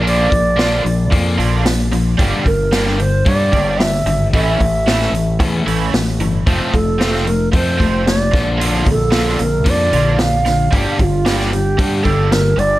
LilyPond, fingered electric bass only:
\new Staff \with { instrumentName = "Fingered electric bass" } { \clef bass \time 4/4 \key bes \lydian \tempo 4 = 113 bes,,8 bes,,4 bes,,8 f,8 bes,,4. | g,,16 r16 g,,4. g,8 g,,4 aes,,8 | a,,8 a,,4 a,,8 e,8 a,,8 a,,8 g,,8 | f,,16 r16 f,,4. f,8 f,,4 bes,,8~ |
bes,,8 bes,,4 bes,,8 f,8 bes,,4. | g,,16 r16 g,,4. g,8 g,,4 g,,8 | }